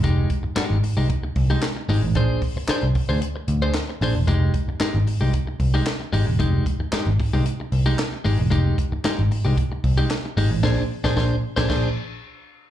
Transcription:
<<
  \new Staff \with { instrumentName = "Clean electric guitar" } { \time 4/4 \key f \dorian \tempo 4 = 113 <aes ees' g'>8 r8 <aes ees' g'>8 r16 <aes ees' g'>16 r8. <aes ees' g'>16 r8 <aes ees' g'>16 r16 | <d' aes' c''>8 r8 <d' aes' c''>16 r8 <d' aes' c''>16 r8. <d' aes' c''>16 r8 <d' aes' c''>16 r16 | <aes ees' g'>8 r8 <aes ees' g'>16 r8 <aes ees' g'>16 r8. <aes ees' g'>16 r8 <aes ees' g'>16 r16 | <aes ees' g'>8 r8 <aes ees' g'>16 r8 <aes ees' g'>16 r8. <aes ees' g'>16 r8 <aes ees' g'>16 r16 |
<aes ees' g'>8 r8 <aes ees' g'>16 r8 <aes ees' g'>16 r8. <aes ees' g'>16 r8 <aes ees' g'>16 r16 | <d' aes' c''>8 r16 <d' aes' c''>16 <d' aes' c''>8 r16 <d' aes' c''>16 <d' aes' c''>8 r4. | }
  \new Staff \with { instrumentName = "Picked electric bass" } { \clef bass \time 4/4 \key f \dorian f,,8 r8. aes,,16 r16 c,16 r8 c,8 r8 aes,,16 a,,16 | bes,,8 r8. c,16 r16 d,16 r8 d,8 r8 bes,,16 e,,16 | f,,8 r8. aes,,16 r16 c,16 r8 c,8 r8 aes,,16 e,,16 | f,,8 r8. aes,,16 r16 c,16 r8 c,8 r8 aes,,16 e,,16 |
f,,8 r8. aes,,16 r16 c,16 r8 c,8 r8 aes,,16 a,,16 | bes,,8 r16 bes,,16 bes,,8 r16 bes,,16 bes,,8 r4. | }
  \new DrumStaff \with { instrumentName = "Drums" } \drummode { \time 4/4 <hh bd>8 <hh bd>8 <hc hh sn>8 hho8 <hh bd>8 <hho bd>8 <hc hh sn>8 hho8 | <hh bd>8 <hho bd>8 <hc hh sn>8 <hho bd>8 hh8 hh8 <hc hh sn>8 hho8 | <hh bd>8 <hh bd>8 <hc hh sn>8 hho8 <hh bd>8 <hho bd>8 <hc hh sn>8 hho8 | <hh bd>8 <hh bd>8 <hc hh sn>8 <hho bd>8 hh8 hho8 <hc hh sn>8 hho8 |
<hh bd>8 <hh bd>8 <hc hh sn>8 hho8 <hh bd>8 <hho bd>8 <hc hh sn>8 hho8 | <cymc bd sn>8. <bd sn>16 <bd sn>8. <bd sn>16 <cymc bd sn>4 r4 | }
>>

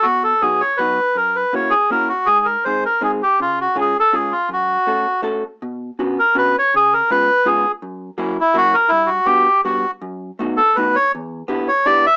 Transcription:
<<
  \new Staff \with { instrumentName = "Bandoneon" } { \time 3/4 \key fis \minor \tempo 4 = 162 fis'8 a'8 gis'8 cis''8 b'4 | ais'8 b'8 cis''8 gis'8 ais'8 fis'8 | gis'8 ais'8 bis'8 ais'8 gis'8 g'8 | eis'8 fis'8 gis'8 a'8 gis'8 eis'8 |
fis'2 r4 | \key b \minor r4. ais'8 b'8 cis''8 | gis'8 ais'8 b'4 gis'8. r16 | r4. e'8 fis'8 ais'8 |
e'8 fis'8 g'4 fis'8. r16 | r4. a'8 b'8 cis''8 | r4. cis''8 d''8 e''8 | }
  \new Staff \with { instrumentName = "Hollow-body jazz guitar" } { \time 3/4 \key fis \minor b,4 <fis b dis' fis'>8 r8 <fis b dis' fis'>8 r8 | fis,4 <ais cis' e' fis'>8 r8 <ais cis' e' fis'>8 r8 | gis,4 <gis bis dis' gis'>8 r8 <gis bis dis' gis'>8 r8 | cis4 <gis cis' eis' gis'>8 r8 <gis cis' eis' gis'>8 r8 |
fis,4 <a cis' fis' a'>8 r8 <a cis' fis' a'>8 r8 | \key b \minor b,4 <b cis' d' fis'>8 r8 <b cis' d' fis'>8 r8 | cis4 <gis b cis' eis'>8 r8 <gis b cis' eis'>8 r8 | fis,4 <fis ais cis' e'>8 r8 <fis ais cis' e'>8 r8 |
g,4 <g b d' fis'>8 r8 <g b d' fis'>8 r8 | fis,4 <a b dis' fis'>8 r8 <a b dis' fis'>8 r8 | e,4 <b d' e' g'>8 r8 <b d' e' g'>8 r8 | }
>>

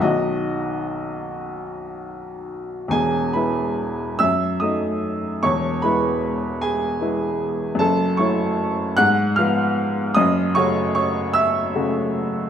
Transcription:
<<
  \new Staff \with { instrumentName = "Upright piano" } { \time 6/8 \key e \major \tempo 4. = 50 <fis' dis''>2~ <fis' dis''>8 r8 | <gis' gis''>8 <b' b''>4 <e'' e'''>8 <dis'' dis'''>4 | <cis'' cis'''>8 <b' b''>4 <gis' gis''>4. | <a' a''>8 <cis'' cis'''>4 <fis'' fis'''>8 <f'' f'''>4 |
<dis'' dis'''>8 <cis'' cis'''>8 <cis'' cis'''>8 <e'' e'''>4. | }
  \new Staff \with { instrumentName = "Upright piano" } { \clef bass \time 6/8 \key e \major <b,, dis fis dis'>2. | <e,, e,>8 <gis e'>4 fis,8 <fis a dis'>4 | <e,, e,>8 <gis b e'>4. <gis b e'>4 | <fis,, fis,>8 <fis a e'>4 aes,8 <f ces' f'>4 |
<fis,, fis,>8 <cis a fis'>4. <cis a fis'>4 | }
>>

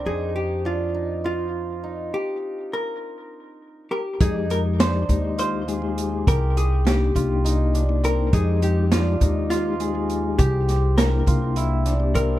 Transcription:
<<
  \new Staff \with { instrumentName = "Hollow-body jazz guitar" } { \time 7/8 \key f \dorian \tempo 4 = 102 aes'8 g'8 f'4 f'4. | g'4 bes'2 <g' bes'>8 | aes'8 bes'8 c''4 c''4. | bes'8 aes'8 g'2 bes'8 |
aes'8 g'8 f'4 f'4. | g'4 bes'2 bes'8 | }
  \new Staff \with { instrumentName = "Hammered dulcimer" } { \time 7/8 \key f \dorian ees'4 d'8 ees'8 f'4 ees'8 | r2. r8 | ees'4 d'8 ees'8 f'8 aes'4 | g'8 g'4 f'8 ees'8 d'8 c'8 |
ees'4 d'8 ees'8 f'8 aes'4 | g'8 g'4 f'8 e'8 d'8 c'8 | }
  \new Staff \with { instrumentName = "Tonewheel organ" } { \time 7/8 \key f \dorian r2. r8 | r2. r8 | <aes ees' g'>8 <aes ees' g'>4 <aes ees' g'>4 <aes ees' g'>16 <aes ees' g'>8. | r4 <bes d' ees'>8 <bes d' ees'>4~ <bes d' ees'>16 <bes d' ees'>8. |
<aes ees' g'>8 <aes ees' g'>4 <aes ees' g'>4 <aes ees' g'>16 <aes ees' g'>8. | r4 <bes d' e'>8 <bes d' e'>4~ <bes d' e'>16 <bes d' g'>8. | }
  \new Staff \with { instrumentName = "Upright bass" } { \clef bass \time 7/8 \key f \dorian f,2.~ f,8 | r2. r8 | f,4. ees,2 | c,4. c,2 |
f,4. ees,2 | c,4. c,2 | }
  \new DrumStaff \with { instrumentName = "Drums" } \drummode { \time 7/8 r4 r4 r4. | r4 r4 r4. | <hh bd>8 hh8 <hh sn>8 <hh bd>8 hh8 hh8 hh8 | <hh bd>8 hh8 <hh sn>8 <hh bd>8 hh8 hh8 hh8 |
<hh bd>8 hh8 <hh sn>8 <hh bd>8 <hh sn>8 hh8 hh8 | <hh bd>8 <hh sn>8 <hh sn>8 <hh bd>8 hh8 <hh sn>8 <hh bd>8 | }
>>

